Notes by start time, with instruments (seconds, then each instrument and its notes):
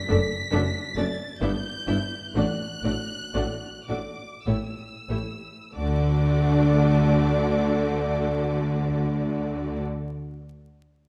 Already playing: violin section B6
0.09 double bass section F#1, cello section F#2, viola section A3 D4, violin section A4 D5
0.51 double bass section F#1, cello section F#2, viola section A3 D4, violin section A4 D5
0.96 double bass section F#1, cello section F#2, viola section A3 D4, violin section A4 D5 A6
1.40 double bass section G1, cello section G2, viola section B3 D4, violin section E4 E5 G6
1.87 double bass section G1, cello section G2, viola section B3 D4, violin section E4 E5
2.33 double bass section A1, cello section A2, viola section A3 D4, violin section F#4 D5 F#6
2.83 double bass section A1, cello section A2, viola section A3 D4, violin section F#4 D5
3.34 double bass section A1, cello section A2, viola section A3 D4, violin section F#4 D5
3.87 double bass section A1, cello section A2, viola section A3 D4, violin section F#4 D5 D6
4.44 double bass section A1, cello section A2, viola section A3 E4, violin section G4 C#5 E6
5.09 double bass section A1, cello section A2, viola section A3 E4, violin section G4 C#5
5.74 double bass section D2, cello section D3, viola section A3 D4, violin section F#4 D5 D6